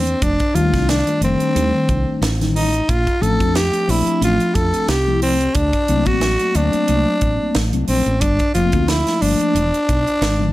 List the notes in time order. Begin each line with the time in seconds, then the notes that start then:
Already playing: E2 C4
0.07 closed hi-hat
0.22 F1 D4, kick, closed hi-hat
0.40 kick, closed hi-hat
0.54 D#2 D#3 G3 A3 D4 F4, closed hi-hat
0.73 C2, kick, snare, closed hi-hat
0.89 D4, snare, closed hi-hat
1.06 D#3 G3 A3 F4, closed hi-hat
1.21 F1 D#3 G3 A3 C4 D4, closed hi-hat
1.40 closed hi-hat
1.56 D#2, closed hi-hat
1.89 C2, kick, closed hi-hat
2.22 A1, snare, closed hi-hat
2.40 D#3 G3 A3 D#4, snare, closed hi-hat
2.55 D#4, open hi-hat
2.74 F4, closed hi-hat
2.89 A#1 F4, kick, closed hi-hat
3.07 kick, closed hi-hat
3.21 A1 F3 A3 C4 D4 A4, closed hi-hat
3.40 F2, kick, closed hi-hat
3.55 G4, snare, closed hi-hat
3.72 F3 A3 C4 D4, closed hi-hat
3.87 A#1 F3 A3 C4 D4 E4, open hi-hat
4.07 closed hi-hat
4.21 A1 F4, closed hi-hat
4.40 closed hi-hat
4.54 F2 A4, kick, closed hi-hat
4.74 closed hi-hat
4.88 C2 G4, snare, closed hi-hat
5.07 F3 A3 C4 E4
5.22 C4, open hi-hat
5.41 F4, closed hi-hat
5.55 D2 D4, kick, closed hi-hat
5.73 kick, closed hi-hat
5.88 C2 F#3 A3 A#3 C4, closed hi-hat
6.06 A1 F#4, kick, closed hi-hat
6.21 snare, closed hi-hat
6.39 F#3 A3 A#3 C4, closed hi-hat
6.55 D2 F#3 A3 A#3 C4 D4, closed hi-hat
6.73 muted fretless electric bass stroke, closed hi-hat
6.88 C2, closed hi-hat
7.21 A1, kick, closed hi-hat
7.55 A1, snare, closed hi-hat
7.73 C2 F#3 A3 A#3 C4, closed hi-hat
7.88 A#1 C4, open hi-hat
8.06 A1 C4, closed hi-hat
8.21 G1 D4, kick, closed hi-hat
8.39 kick, closed hi-hat
8.54 F1 F3 A3 A#3 C4 F4, closed hi-hat
8.72 D2, kick, closed hi-hat
8.88 E4, snare, closed hi-hat
9.07 F3 A3 A#3 D4, snare, closed hi-hat
9.21 G1 F3 A3 A#3 D4, open hi-hat
9.40 closed hi-hat
9.55 E1, closed hi-hat
9.74 closed hi-hat
9.89 B1, kick, closed hi-hat
10.07 closed hi-hat
10.21 G#1, snare, closed hi-hat
10.39 D3 F3 G#3 B3